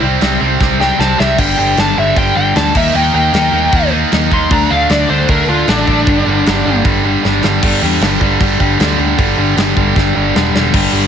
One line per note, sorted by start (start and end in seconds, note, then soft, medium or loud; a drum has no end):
0.02 0.17 C2 medium
0.02 0.19 C3 medium
0.02 0.20 G3 medium
0.02 0.20 C4 medium
0.20 0.37 C2 loud
0.20 0.39 C3 medium
0.20 0.41 G3 medium
0.20 0.40 C4 loud
0.20 snare loud
0.20 crash medium
0.41 0.56 C2 medium
0.41 0.59 C3 medium
0.41 0.60 G3 medium
0.41 0.60 C4 medium
0.60 0.91 C2 medium
0.60 0.78 C3 medium
0.60 0.79 G3 loud
0.60 0.79 C4 loud
0.60 kick loud
0.60 snare medium
0.79 0.97 C3 medium
0.79 0.98 G3 medium
0.79 0.98 C4 medium
0.79 0.99 G5 loud
0.79 snare medium
0.98 1.14 C2 medium
0.98 1.17 C3 medium
0.98 1.18 G3 medium
0.98 1.18 C4 loud
0.98 1.18 A5 loud
0.98 snare medium
1.18 1.34 C2 medium
1.18 1.37 C3 medium
1.18 1.39 G3 medium
1.18 1.37 C4 medium
1.18 1.39 E5 medium
1.18 snare medium
1.38 1.53 G1 medium
1.38 1.56 G2 medium
1.38 1.56 D3 medium
1.38 1.58 G3 loud
1.38 1.58 G5 medium
1.38 kick loud
1.38 crash loud
1.57 1.73 G1 medium
1.57 1.76 G2 medium
1.57 1.76 D3 medium
1.57 1.78 G3 medium
1.57 1.80 G5 loud
1.77 1.92 G1 medium
1.77 1.96 G2 loud
1.77 1.96 D3 loud
1.77 1.97 G3 loud
1.77 1.97 A5 medium
1.77 snare loud
1.77 crash medium
1.97 2.12 G1 medium
1.97 2.15 G2 medium
1.97 2.15 D3 medium
1.97 2.16 G3 medium
1.97 2.18 E5 medium
2.16 2.32 G1 medium
2.16 2.34 G2 loud
2.16 2.35 D3 loud
2.16 2.35 G3 loud
2.16 2.35 G5 medium
2.16 kick loud
2.16 crash medium
2.35 2.51 G1 medium
2.35 2.54 G2 medium
2.35 2.55 D3 medium
2.35 2.55 G3 loud
2.35 2.55 G5 loud
2.55 2.71 D2 medium
2.55 2.74 G2 loud
2.55 2.74 D3 medium
2.55 2.74 G3 loud
2.55 2.75 A5 loud
2.55 snare loud
2.55 crash medium
2.74 2.90 D#2 medium
2.74 2.93 D#3 medium
2.74 2.93 A#3 loud
2.74 2.93 D#4 loud
2.74 2.95 E5 loud
2.74 kick loud
2.74 crash medium
2.94 3.09 D#2 loud
2.94 3.12 D#3 loud
2.94 3.13 A#3 loud
2.94 3.13 D#4 loud
2.94 3.14 G5 medium
2.94 crash medium
3.13 3.29 D#2 medium
3.13 3.32 D#3 medium
3.13 3.33 A#3 medium
3.13 3.32 D#4 medium
3.13 3.90 G5 loud
3.33 3.48 D#2 medium
3.33 3.51 D#3 loud
3.33 3.52 A#3 medium
3.33 3.52 D#4 loud
3.33 snare loud
3.33 crash medium
3.52 3.67 D#2 medium
3.52 3.71 D#3 medium
3.52 3.71 A#3 medium
3.52 3.72 D#4 medium
3.72 4.03 D#2 medium
3.72 3.90 D#3 medium
3.72 3.90 A#3 loud
3.72 3.91 D#4 loud
3.72 kick loud
3.72 crash medium
3.91 4.10 D#3 medium
3.91 4.10 A#3 loud
3.91 4.10 D#4 loud
4.11 4.27 D#2 medium
4.11 4.30 D#3 loud
4.11 4.31 A#3 loud
4.11 4.31 D#4 loud
4.11 snare loud
4.11 crash medium
4.31 4.46 D#2 medium
4.31 4.50 D#3 medium
4.31 4.50 A#3 medium
4.31 4.50 D#4 loud
4.31 4.51 C6 loud
4.31 kick medium
4.50 4.66 D2 medium
4.50 4.69 D3 loud
4.50 4.70 A3 loud
4.50 4.71 D4 loud
4.50 4.71 A#5 loud
4.50 kick loud
4.50 crash medium
4.70 4.86 D2 medium
4.70 4.88 D3 medium
4.70 4.88 A3 medium
4.70 4.90 D4 loud
4.70 4.90 F5 loud
4.89 5.05 D2 loud
4.89 5.07 D3 loud
4.89 5.08 A3 medium
4.89 5.09 D4 loud
4.89 5.09 D5 medium
4.89 snare loud
4.89 crash medium
5.09 5.25 D2 medium
5.09 5.28 D3 medium
5.09 5.28 A3 medium
5.09 5.29 D4 loud
5.09 5.28 C5 medium
5.28 5.44 D2 loud
5.28 5.48 D3 medium
5.28 5.48 A3 loud
5.28 5.49 D4 loud
5.28 5.48 A#4 loud
5.28 kick loud
5.28 crash medium
5.47 5.63 D2 medium
5.47 5.67 D3 medium
5.47 5.67 A3 medium
5.47 5.69 D4 loud
5.47 5.68 F4 medium
5.68 5.83 A1 loud
5.68 5.86 D3 loud
5.68 5.87 A3 loud
5.68 6.82 D4 loud
5.68 5.87 D4 loud
5.68 snare loud
5.68 crash medium
5.87 6.03 A1 medium
5.87 6.06 D3 medium
5.87 6.06 A3 medium
5.87 9.38 D4 loud
5.87 kick medium
6.07 6.22 G1 medium
6.07 6.26 G2 medium
6.07 6.26 D3 medium
6.07 6.27 G3 loud
6.07 kick loud
6.07 crash medium
6.26 6.41 G1 medium
6.26 6.45 G2 medium
6.26 6.45 D3 loud
6.26 6.46 G3 medium
6.46 6.61 G1 loud
6.46 6.64 G2 medium
6.46 6.65 D3 loud
6.46 6.65 G3 loud
6.46 snare loud
6.46 crash medium
6.65 6.81 G1 medium
6.65 6.84 G2 medium
6.65 6.84 D3 medium
6.65 6.84 G3 medium
6.85 7.15 G1 loud
6.85 7.03 G2 loud
6.85 7.03 D3 loud
6.85 7.04 G3 loud
6.85 kick loud
6.85 crash medium
7.04 7.23 G2 medium
7.04 7.23 D3 medium
7.04 7.24 G3 loud
7.24 7.39 G1 loud
7.24 7.43 G2 medium
7.24 7.43 D3 loud
7.24 7.43 G3 loud
7.24 snare medium
7.43 7.58 G1 medium
7.43 7.61 G2 medium
7.43 7.62 D3 medium
7.43 7.62 G3 loud
7.43 snare medium
7.63 7.78 G1 medium
7.63 7.82 G2 loud
7.63 7.82 D3 loud
7.63 7.83 G3 loud
7.63 kick loud
7.63 crash loud
7.63 crash medium
7.82 7.97 E2 medium
7.82 8.02 G2 medium
7.82 8.01 D3 medium
7.82 8.02 G3 loud
8.01 8.16 G1 medium
8.01 8.20 G2 medium
8.01 8.20 D3 medium
8.01 8.21 G3 medium
8.01 snare loud
8.01 crash medium
8.21 8.36 G1 medium
8.21 8.40 G2 medium
8.21 8.39 D3 medium
8.21 8.41 G3 loud
8.21 kick medium
8.40 8.56 G1 medium
8.40 8.58 G2 loud
8.40 8.58 D3 loud
8.40 8.59 G3 loud
8.40 kick loud
8.40 crash medium
8.59 8.75 G1 medium
8.59 8.79 G2 medium
8.59 8.78 D3 medium
8.59 8.79 G3 loud
8.59 kick medium
8.79 8.94 D2 medium
8.79 8.97 G2 medium
8.79 8.97 D3 medium
8.79 8.98 G3 loud
8.79 snare loud
8.79 crash medium
8.97 9.14 D2 medium
8.97 9.16 G2 medium
8.97 9.17 D3 medium
8.97 9.17 G3 medium
9.18 9.34 G1 loud
9.18 9.36 G2 medium
9.18 9.36 D3 loud
9.18 9.37 G3 loud
9.18 kick loud
9.18 crash medium
9.37 9.53 G1 medium
9.37 9.55 G2 medium
9.37 9.56 D3 medium
9.37 9.56 G3 loud
9.56 9.72 G1 loud
9.56 9.75 G2 medium
9.56 9.75 D3 medium
9.56 9.75 G3 medium
9.56 snare loud
9.56 crash medium
9.76 9.92 G1 medium
9.76 9.94 G2 medium
9.76 9.95 D3 loud
9.76 9.95 G3 loud
9.76 kick medium
9.95 10.11 G1 loud
9.95 10.14 G2 medium
9.95 10.14 D3 loud
9.95 10.14 G3 loud
9.95 kick loud
9.95 snare medium
10.15 10.31 G1 medium
10.15 10.33 G2 medium
10.15 10.34 D3 medium
10.15 10.34 G3 medium
10.35 10.50 E1 loud
10.35 10.53 G2 medium
10.35 10.53 D3 loud
10.35 10.54 G3 loud
10.35 snare medium
10.54 10.69 E1 medium
10.54 10.72 G2 medium
10.54 10.72 D3 medium
10.54 10.72 G3 loud
10.54 snare medium
10.73 10.86 G1 loud
10.73 10.91 G2 loud
10.73 10.91 D3 loud
10.73 10.92 G3 loud
10.73 kick loud
10.73 crash loud
10.92 11.05 G1 loud
10.92 11.07 G2 loud
10.92 11.07 D3 medium
10.92 11.07 G3 loud